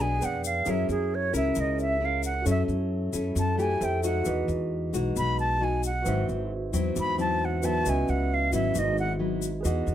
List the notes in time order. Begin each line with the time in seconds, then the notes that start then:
Already playing: B1 B2 G#4 B4 D#5 F#5
0.00 B3 D4 G#4 G#5
0.20 F2 G#4 B4 D5 G5, shaker
0.25 F#5
0.44 F5, shaker
0.65 F#2 F#3 C#4 E4 G#4 A#4 C#5, shaker
0.70 E5
0.89 F#2 G#4, shaker
1.15 C#5
1.33 C#2 C#4 E4 A#4 E5, shaker
1.55 C#2 C#3, shaker
1.61 D#5
1.76 G#4 A#4 C#5 E5, shaker
1.82 E5
2.00 C#4 E4 A#4
2.05 F5
2.23 F#5, shaker
2.42 F#3 C#4 E4 F#4 A4
2.46 F#2 A4 C#5 E5, shaker
2.50 E5
2.68 F#2, shaker
3.13 F#2 C#4 E4 A4, shaker
3.35 F#2 F#3 A5, shaker
3.57 A3 E4 G4 G#5, shaker
3.81 F2 A4 C5 E5 G5, shaker
4.03 G#3 D#4 F#4 F#5, shaker
4.23 E2 E3 F#4 G#4, shaker
4.27 B4 D#5
4.48 E2, shaker
4.93 B1 G#3 D#4 F#4, shaker
5.16 B1 B2 B5, shaker
5.38 A5, shaker
5.60 G#3 D#4 F#4 G#5
5.83 F#5, shaker
6.03 G#1 G#2 F#3 C4 F#4 B4, shaker
6.07 E4 C5 E5
6.29 G#1, shaker
6.73 E2 F#3 C4 E4, shaker
6.95 E2 G#2, shaker
7.00 B5
7.18 F#3 C4 E4 A5, shaker
7.45 F#5
7.61 F#3 B3 E4 F#4 B4 C5 E5, shaker
7.65 A5
7.82 C#2 C#3 F#4 B4, shaker
7.87 D#5 E5 G#5
8.08 C#2 F#5, shaker
8.34 F5
8.52 G#1 F#3 B3 E4 E5, shaker
8.74 G#1 G#2, shaker
8.79 D#5
8.98 F#5, shaker
9.19 F#3 B3 E4
9.42 shaker
9.61 E3 G#3 G#4 B4
9.65 E2 D#4 F#4 D#5 F#5, shaker
9.87 E2, shaker